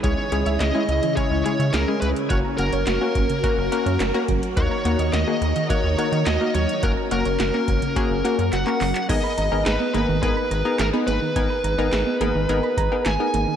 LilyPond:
<<
  \new Staff \with { instrumentName = "Synth arpeggio sound" } { \time 4/4 \key gis \minor \tempo 4 = 106 gis'''16 cis'''16 gis''16 e''16 gis'16 r8 e16 gis'''16 r16 gis''16 e''16 gis'16 r16 gis16 r16 | fis'''16 ais''16 fis''16 cis''16 fis'16 r8 cis16 fis'''16 r16 fis''16 cis''16 fis'16 r16 fis16 r16 | fis'''16 ais''16 fis''16 dis''16 fis'16 r8 dis16 fis'''16 r16 fis''16 dis''16 fis'16 r16 fis16 r16 | fis'''16 ais''16 fis''16 cis''16 fis'16 r8 cis16 fis'''16 r16 fis''16 cis''16 fis'16 r16 fis16 r16 |
gis'''16 b''16 ais''16 dis''16 gis'16 b16 ais16 dis16 gis'''16 b''16 ais''16 r16 gis'16 b16 ais16 dis16 | gis'''16 b''16 ais''16 dis''16 gis'16 b16 ais16 dis16 gis'''16 b''16 ais''16 r16 gis'16 b16 ais16 dis16 | }
  \new Staff \with { instrumentName = "Lead electric guitar" } { \time 4/4 \key gis \minor cis''4 dis''4 cis''8 cis''8 ais'8 b'8 | cis''8 ais'2. r8 | cis''4 dis''4 cis''8 cis''8 dis''8 cis''8 | ais'8 ais'2~ ais'8 fis''4 |
dis''4 b'8 b'8 b'4 ais'8 b'8~ | b'2. gis''4 | }
  \new Staff \with { instrumentName = "Synth pluck" } { \time 4/4 \key gis \minor <gis cis' e' gis'>16 r16 <gis cis' e' gis'>8 r16 <gis cis' e' gis'>8 r16 <gis cis' e' gis'>16 r16 <gis cis' e' gis'>8 r16 <gis cis' e' gis'>8 r16 | <ais cis' fis' ais'>16 r16 <ais cis' fis' ais'>8 r16 <ais cis' fis' ais'>8 r16 <ais cis' fis' ais'>16 r16 <ais cis' fis' ais'>8 r16 <ais cis' fis' ais'>8 r16 | <ais dis' fis' ais'>16 r16 <ais dis' fis' ais'>8 r16 <ais dis' fis' gis'>8 r16 <ais dis' fis' ais'>16 r16 <ais dis' fis' ais'>8 r16 <ais dis' fis' ais'>8 r16 | <ais cis' fis' ais'>16 r16 <ais cis' fis' ais'>8 r16 <ais cis' fis' ais'>8 r16 <ais cis' fis' gis'>16 r16 <ais cis' fis' ais'>8 r16 <ais cis' fis' ais'>8 r16 |
<b dis' gis' ais'>8 r16 <b dis' gis' ais'>8 r16 <b dis' gis' ais'>16 r16 <b dis' gis' ais'>8 r16 <b dis' gis' ais'>16 r16 <b dis' gis' b'>8 r16 | <b dis' gis' ais'>8 r16 <b dis' gis' ais'>8 r16 <b dis' gis' ais'>16 r16 <b dis' gis' ais'>8 r16 <b dis' gis' ais'>16 r16 <b dis' gis' ais'>8 r16 | }
  \new Staff \with { instrumentName = "String machine" } { \time 4/4 \key gis \minor <cis cis' e' gis'>1 | <ais fis'>1 | <dis dis' ais'>1 | <ais cis'>1 |
r1 | r1 | }
  \new Staff \with { instrumentName = "Analog synth bass" } { \clef bass \time 4/4 \key gis \minor cis,16 r16 cis,16 cis,16 cis,16 r16 cis,16 r8 cis,16 r16 cis16 cis,16 r16 cis,16 r16 | fis,,16 r16 fis,,16 fis,,16 fis,,16 r16 fis,,16 r8 fis,,16 r16 fis,16 fis,,16 r16 fis,,16 r16 | dis,16 r16 dis,16 dis,16 dis,16 r16 dis,16 r8 dis,16 r16 dis16 dis,16 r16 dis,16 r16 | fis,,16 r16 fis,,16 fis,,16 fis,,16 r16 fis,,16 r8 fis,,16 r16 fis,16 fis,,16 r16 fis,,16 r16 |
gis,,16 r16 gis,,16 gis,,16 gis,,16 r16 gis,,16 gis,,16 gis,,16 r16 gis,,16 r16 gis,,16 r16 gis,,16 r16 | gis,,16 r16 gis,,16 gis,,16 gis,,16 r16 gis,,16 gis,,16 gis,,16 r16 gis,,16 r16 gis,,16 r16 gis,,16 r16 | }
  \new DrumStaff \with { instrumentName = "Drums" } \drummode { \time 4/4 <hh bd>8 hh16 hh16 <hc hh sn>8 hh16 hh16 <hh bd>8 hh16 hh16 <hc hh sn>8 hh16 hh16 | <hh bd>8 hh16 hh16 <hc hh sn>8 <hh bd>16 hh16 <hh bd>8 hh16 hh16 <hc hh sn>8 <hh bd>16 hh16 | <hh bd>8 hh16 hh16 <hc hh sn>8 hh16 hh16 <hh bd>8 hh16 hh16 <hc hh sn>8 hh16 hh16 | <hh bd>8 hh16 hh16 <hc hh sn>8 <hh bd>16 hh16 <hh bd>8 hh16 hh16 <hc hh>16 hc16 <hc hho>16 <hc hh>16 |
<cymc hh bd>8 hh8 <hc hh sn>8 hh8 <hh bd>8 hh8 <hc hh sn>8 hh8 | <hh bd>8 hh8 <hc hh sn>8 hh8 hh8 <hh bd>8 <hc hh sn>8 hh8 | }
>>